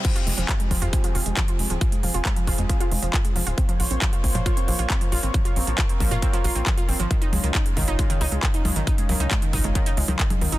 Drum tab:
CC |x---------------|----------------|----------------|----------------|
HH |xxoxxxoxxxoxxxox|xxoxxxoxxxoxxxox|xxoxxxoxxxoxxxox|xxoxxxoxxxoxxxox|
CP |----x-------x---|----x-------x---|----x-------x---|----x-------x---|
CG |----------------|----------------|----------------|----------------|
BD |o---o-o-o---o---|o---o-o-o---o---|o---o-o-o---o---|o---o-o-o---o---|

CC |----------------|----------------|
HH |xxoxxxoxxxoxxxox|xxoxxxoxxxoxxxox|
CP |----x-------x---|----x-------x---|
CG |--o-----------o-|--o--------o-o--|
BD |o---o-o-o---o---|o---o-o-o---o---|